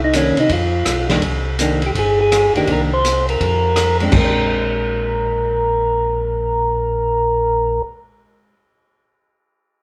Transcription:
Already playing: tonewheel organ C2
0.04 tonewheel organ D#4
0.13 hollow-body jazz guitar D#3 A#3 D4, tonewheel organ C#4, hi-hat pedal, ride
0.37 tonewheel organ C3 D#4, ride
0.49 tonewheel organ F2 F4, kick, ride
0.85 tonewheel organ B1, cross-stick, hi-hat pedal, ride
1.09 hollow-body jazz guitar D#3 A#3 D4, snare, ride
1.22 tonewheel organ C2, kick, ride
1.59 hollow-body jazz guitar D#3 A#3 D4, hi-hat pedal, ride
1.82 ride
1.86 tonewheel organ G4
1.95 tonewheel organ G1, kick, ride
1.99 tonewheel organ G#4
2.21 tonewheel organ G#4
2.32 cross-stick, hi-hat pedal, ride
2.54 tonewheel organ G1 G4, hollow-body jazz guitar D#3 A#3 D4, ride
2.67 tonewheel organ C2, hollow-body jazz guitar D#3 A#3 D4, kick, ride
2.72 tonewheel organ A#4
2.93 tonewheel organ C5
3.05 hi-hat pedal, ride
3.29 tonewheel organ A#4, ride
3.40 tonewheel organ F2, kick, ride
3.76 cross-stick, hi-hat pedal, ride
4.00 hollow-body jazz guitar G#3 C4 D4, ride
4.11 tonewheel organ A#1, hollow-body jazz guitar G#3, kick, floor tom, crash
4.17 hollow-body jazz guitar C4, tonewheel organ A#4
4.23 hollow-body jazz guitar D4

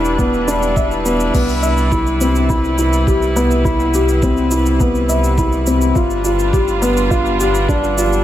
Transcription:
Already playing: sub bass E1, string section G3 D4 E4 B4, felt piano D4 E4 G4
0.05 shaker
0.19 felt piano B3, kick, shaker
0.34 shaker
0.48 felt piano D4, shaker
0.63 shaker
0.76 felt piano E5, kick, shaker
0.91 shaker
1.05 felt piano B3, shaker
1.20 shaker
1.34 sub bass C2, felt piano B3, kick, crash, shaker
1.49 shaker
1.63 felt piano E5, shaker
1.77 shaker
1.92 felt piano E4, kick, shaker
2.07 shaker
2.21 felt piano C4, shaker
2.35 shaker
2.49 felt piano E4, kick, shaker
2.64 shaker
2.78 felt piano E4, shaker
2.93 shaker
3.07 felt piano G4, kick, shaker
3.22 shaker
3.36 felt piano B3, shaker
3.51 shaker
3.65 felt piano E4, kick, shaker
3.80 shaker
3.94 felt piano G4, shaker
4.09 shaker
4.22 felt piano C4, kick, shaker
4.37 shaker
4.51 felt piano E4, shaker
4.66 shaker
4.80 felt piano B3, kick, shaker
4.95 shaker
5.09 felt piano E5, shaker
5.24 shaker
5.38 felt piano E4, kick, shaker
5.52 shaker
5.67 felt piano C4, shaker
5.81 shaker
5.95 sub bass G1, string section G3, felt piano F4, kick, shaker
6.04 string section D4
6.11 shaker
6.24 felt piano F4, string section F4, shaker
6.39 shaker
6.53 felt piano G4, kick, shaker
6.68 shaker
6.82 felt piano B3, shaker
6.97 shaker
7.11 felt piano F4, kick, shaker
7.26 shaker
7.40 felt piano G4, shaker
7.55 shaker
7.69 felt piano D4, kick, shaker
7.84 shaker
7.98 felt piano F4, shaker
8.13 shaker

